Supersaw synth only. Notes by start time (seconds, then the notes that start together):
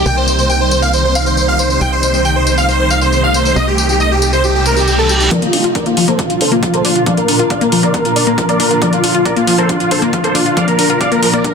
0.06 G5
0.17 C5
0.28 C5
0.39 C5
0.50 G5
0.61 C5
0.72 C5
0.82 F5
0.93 C5
1.04 C5
1.15 F5
1.26 C5
1.37 C5
1.48 F5
1.59 C5
1.70 C5
1.81 G5
1.92 C5
2.03 C5
2.14 C5
2.25 G5
2.36 C5
2.47 C5
2.58 F5
2.68 C5
2.79 C5
2.90 F5
3.02 C5
3.13 C5
3.24 F5
3.35 C5
3.46 C5
3.56 D#5
3.68 G4
3.78 G4
3.89 G4
4.01 D#5
4.11 G4
4.22 G4
4.33 C5
4.44 G4
4.55 G4
4.66 A#4
4.77 G4
4.88 G4
4.98 A4
5.10 G4
5.20 G4
5.31 A#4 D5
5.42 F4
5.53 F4
5.64 F4
5.75 A#4 D5
5.86 F4
5.97 F4
6.08 A4 C5
6.19 F4
6.30 F4
6.41 A4 C5
6.52 F4
6.63 F4
6.74 A4 C5
6.85 F4
6.96 F4
7.07 D5 F5
7.17 A#4
7.28 A#4
7.40 A#4
7.50 D5 F5
7.61 A#4
7.72 A#4
7.83 A#4 D5
7.94 A#4
8.05 A#4
8.16 A#4 D5
8.27 A#4
8.38 A#4
8.49 A#4 D5
8.60 A#4
8.71 A#4
8.82 A#4 D5
8.93 F4
9.04 F4
9.15 F4
9.26 A#4 D5
9.37 F4
9.48 F4
9.58 A4 C5
9.69 F4
9.80 F4
9.91 A4 C5
10.02 F4
10.13 F4
10.24 A4 C5
10.35 F4
10.46 F4
10.57 D5 F5
10.68 A#4
10.79 A#4
10.90 A#4
11.01 D5 F5
11.12 A#4
11.22 A#4
11.33 A#4 D5
11.44 A#4